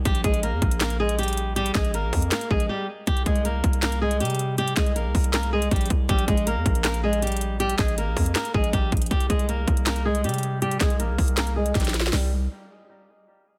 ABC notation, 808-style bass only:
X:1
M:4/4
L:1/16
Q:1/4=159
K:Bbmix
V:1 name="808-style bass" clef=bass
B,,,2 B,,,3 F,, B,,,8- B,,,2- | B,,,2 B,,,2 A,,, B,,, F,,2 z2 B,,,2 z4 | C,,2 C,,4 C,,6 C,4- | C,2 C,,2 B,,, C,, C,,6 B,,,2 C,,2 |
B,,,2 B,,,3 F,, B,,,8- B,,,2- | B,,,2 B,,,2 A,,, B,,, F,,2 z2 B,,,2 B,,,2 B,,,2 | C,,2 C,,4 C,,6 C,4- | C,2 C,,2 B,,, C,, C,,6 B,,,4 |
C,,4 z12 |]